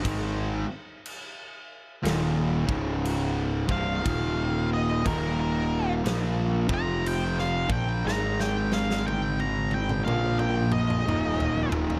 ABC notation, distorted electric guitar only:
X:1
M:4/4
L:1/8
Q:"Swing" 1/4=60
K:Eb
V:1 name="Distorted electric guitar" clef=bass
[A,,E,A,] z3 [E,,B,,E,] [_D,,A,,_D,]2 [C,,G,,C,] | [E,,B,,E,]2 [E,,B,,E,]2 [B,,F,B,] [F,,C,F,]2 [B,,F,B,] | [A,,E,A,]4 [B,,F,B,]2 [E,,B,,E,] [E,,B,,E,] |]